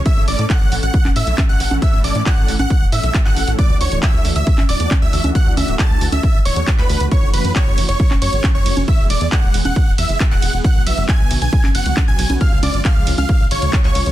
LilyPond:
<<
  \new Staff \with { instrumentName = "Digital synth lead" } { \time 4/4 \key a \major \tempo 4 = 136 e'''8 d'''8 fis'''8 r16 fis'''8 r16 e'''8 r16 fis'''8 r16 | e'''8 d'''8 fis'''8 r16 fis'''8 r16 e'''8 r16 fis'''8 r16 | d'''8 cis'''8 e'''8 r16 e'''8 r16 d'''8 r16 e'''8 r16 | fis'''8 e'''8 a'''8 r16 e'''8 r16 cis'''8 r16 b''8 r16 |
cis'''8 b''8 cis'''8 r16 cis'''8 r16 cis'''8 r16 cis'''8 r16 | e'''8 d'''8 fis'''8 r16 fis'''8 r16 e'''8 r16 fis'''8 r16 | fis'''8 e'''8 gis'''8 r16 gis'''8 r16 fis'''8 r16 gis'''8 r16 | eis'''8 d'''8 eis'''8 r16 eis'''8 r16 cis'''8 r16 cis'''8 r16 | }
  \new Staff \with { instrumentName = "Supersaw synth" } { \time 4/4 \key a \major e''8 d''8 fis''8 r16 fis''8 r16 e''8 r16 fis''8 r16 | e''8 d''8 fis''8 r16 fis''8 r16 e''8 r16 fis''8 r16 | d''8 cis''8 e''8 r16 e''8 r16 d''8 r16 e''8 r16 | fis''8 e''8 a''8 r16 e''8 r16 cis''8 r16 b'8 r16 |
cis''8 b'8 cis''8 r16 cis''8 r16 cis''8 r16 cis''8 r16 | e''8 d''8 fis''8 r16 fis''8 r16 e''8 r16 fis''8 r16 | fis''8 e''8 gis''8 r16 gis''8 r16 fis''8 r16 gis''8 r16 | eis''8 d''8 eis''8 r16 eis''8 r16 cis''8 r16 cis''8 r16 | }
  \new Staff \with { instrumentName = "Analog synth pad" } { \time 4/4 \key a \major <e a cis' a'>16 <e a cis' a'>16 <e a cis' a'>8 r16 <e a cis' a'>8 r8. <e a cis' a'>8 r16 <e a cis' a'>8 <e a cis' a'>16 | <e a cis' a'>16 <e a cis' a'>16 <e a cis' a'>8 r16 <e a cis' a'>8 r8. <e a cis' a'>8 r16 <e a cis' a'>8 <e a cis' a'>16 | <e a d' fis'>16 <e a d' fis'>16 <e a d' fis'>8 r16 <e a d' fis'>8 r8. <e a d' fis'>8 r16 <e a d' fis'>8 <e a d' fis'>16 | <e a d' fis'>16 <e a d' fis'>16 <e a d' fis'>8 r16 <e a d' fis'>8 r8. <e a d' fis'>8 r16 <e a d' fis'>8 <e a d' fis'>16 |
<e a cis' fis'>16 <e a cis' fis'>16 <e a cis' fis'>8 r16 <e a cis' fis'>8 r8. <e a cis' fis'>8 r16 <e a cis' fis'>8 <e a cis' fis'>16 | <e gis b gis'>16 <e gis b gis'>16 <e gis b gis'>8 r16 <e gis b gis'>8 r8. <e gis b gis'>8 r16 <e gis b gis'>8 <e gis b gis'>16 | <d fis b fis'>16 <d fis b fis'>16 <d fis b fis'>8 r16 <d fis b fis'>8 r8. <d fis b fis'>8 r16 <d fis b fis'>8 <d fis b fis'>16 | <cis eis gis eis'>16 <cis eis gis eis'>16 <cis eis gis eis'>8 r16 <cis eis gis eis'>8 r8. <cis eis gis eis'>8 r16 <cis eis gis eis'>8 <cis eis gis eis'>16 | }
  \new Staff \with { instrumentName = "Analog synth bass" } { \clef bass \time 4/4 \key a \major r16 a,,16 a,,16 a,16 r16 a,,16 a,,16 a,,16 r16 e,,16 a,16 b,,16 r16 a,,16 a,,16 a,,16 | r16 a,,16 a,,16 a,16 r16 a,,16 a,,16 a,,16 r16 e,,16 a,16 b,,16 r16 a,,16 a,,16 a,,16 | r16 d,16 d,16 d,,16 r16 d,16 d,16 d,16 r16 a,,16 d,,16 e,16 r16 d,16 d,16 d,16 | r16 d,16 d,16 d,,16 r16 d,16 d,16 d,16 r16 a,,16 d,,16 e,16 r16 d,16 d,16 d,16 |
r16 fis,,16 fis,,16 fis,16 r16 fis,,16 fis,,16 fis,,16 r16 e,,16 fis,16 gis,,16 r16 fis,,16 fis,,16 fis,,16 | r16 e,,16 e,,16 e,16 r16 e,,16 e,,16 e,,16 r16 d,,16 e,16 fis,,16 r16 e,,16 e,,16 e,,16 | r16 b,,16 b,,16 fis,,16 r16 b,,16 b,,16 b,,16 r16 a,,16 fis,,16 cis,16 r16 b,,16 b,,16 b,,16 | r16 cis,16 cis,16 gis,,16 r16 cis,16 cis,16 cis,16 r16 b,,16 gis,,16 d,16 r16 cis,16 cis,16 cis,16 | }
  \new DrumStaff \with { instrumentName = "Drums" } \drummode { \time 4/4 <hh bd>8 hho16 hh16 <hc hh bd>8 hho16 hh16 <hh bd>16 <hc cgho>16 hho16 hh16 <hc cgho hh bd>8 hho16 <cgho hh>16 | <hh bd>8 hho16 hh16 <hc hh bd>8 hho16 <cgho hh>16 <hh bd>8 hho16 hh16 <hc hh bd>16 hc16 hho16 hh16 | <hh bd>8 hho16 hh16 <hc hh bd>8 hho16 hh16 <hh bd>16 <hc cgho>16 hho16 hh16 <hc cgho hh bd>8 hho16 <cgho hh>16 | <hh bd>8 <cgho hho>16 hh16 <hc hh bd>8 hho16 <cgho hh>16 <hh bd>8 hho16 hh16 <hc hh bd>16 hc16 hho16 hh16 |
<hh bd>8 <hho cymr>16 hh16 <hc hh bd>8 <hho cymr>16 hh16 <hh bd>16 <hc cgho>16 <hho cymr>16 hh16 <hc cgho hh bd>8 <hho cymr>16 <cgho hh>16 | <hh bd>8 <hho cymr>16 hh16 <hc hh bd>8 <hho cymr>16 <cgho hh>16 <hh bd>8 <hho cymr>16 hh16 <hc hh bd>16 hc16 <hho cymr>16 hh16 | <hh bd>8 <hho cymr>16 hh16 <hc hh bd>8 <hho cymr>16 hh16 <hh bd>16 <hc cgho>16 <hho cymr>16 hh16 <hc cgho hh bd>8 <hho cymr>16 <cgho hh>16 | <hh bd>8 <cgho hho cymr>16 hh16 <hc hh bd>8 <hho cymr>16 <cgho hh>16 <hh bd>8 <hho cymr>16 hh16 <hc hh bd>16 hc16 <hho cymr>16 hh16 | }
>>